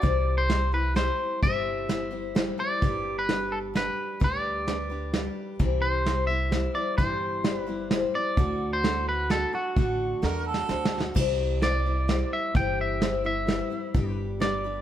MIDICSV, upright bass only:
0, 0, Header, 1, 2, 480
1, 0, Start_track
1, 0, Tempo, 464037
1, 35, Time_signature, 3, 2, 24, 8
1, 15325, End_track
2, 0, Start_track
2, 0, Title_t, "Upright bass"
2, 0, Program_c, 0, 32
2, 33, Note_on_c, 0, 36, 75
2, 1121, Note_off_c, 0, 36, 0
2, 1481, Note_on_c, 0, 31, 75
2, 2565, Note_off_c, 0, 31, 0
2, 2915, Note_on_c, 0, 31, 76
2, 4001, Note_off_c, 0, 31, 0
2, 4360, Note_on_c, 0, 38, 70
2, 5443, Note_off_c, 0, 38, 0
2, 5793, Note_on_c, 0, 36, 76
2, 6878, Note_off_c, 0, 36, 0
2, 7223, Note_on_c, 0, 31, 76
2, 8312, Note_off_c, 0, 31, 0
2, 8658, Note_on_c, 0, 38, 85
2, 9750, Note_off_c, 0, 38, 0
2, 10104, Note_on_c, 0, 33, 83
2, 10467, Note_off_c, 0, 33, 0
2, 10585, Note_on_c, 0, 40, 72
2, 10993, Note_off_c, 0, 40, 0
2, 11064, Note_on_c, 0, 38, 76
2, 11473, Note_off_c, 0, 38, 0
2, 11540, Note_on_c, 0, 36, 81
2, 12632, Note_off_c, 0, 36, 0
2, 12977, Note_on_c, 0, 31, 78
2, 14070, Note_off_c, 0, 31, 0
2, 14427, Note_on_c, 0, 31, 86
2, 15325, Note_off_c, 0, 31, 0
2, 15325, End_track
0, 0, End_of_file